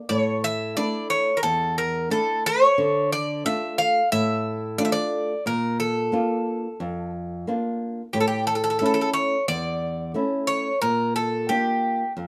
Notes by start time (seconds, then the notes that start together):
0.09 A2 C#5
0.44 E5
0.77 A3 D4 E4 D5
1.10 C#5
1.37 A#4
1.43 E2 A4
1.78 A#4
2.10 A3 D4 E4 A4
2.46 C#5
2.78 D3
3.12 D5
3.45 A3 D4 F4 E5
3.78 F5
4.12 A2 E5
4.78 A3 D4 F4 D5
4.85 E5
4.92 D5
5.46 A#2 A#4
5.80 A4
6.12 A#3 D4 F4
6.80 F2
7.47 A#3 D4 F4
8.13 A2 G4
8.20 A4
8.28 G4
8.47 A4
8.55 A4
8.64 A4
8.70 A4
8.79 A3 C#4 E4 A4
8.86 A4
8.94 A4
9.01 A4
9.13 C#5
9.48 E2 D5
10.14 A3 C#4 E4
10.47 C#5
10.82 A#2 A#4
11.16 A4
11.49 A#3 D4 F4 G4
12.17 F2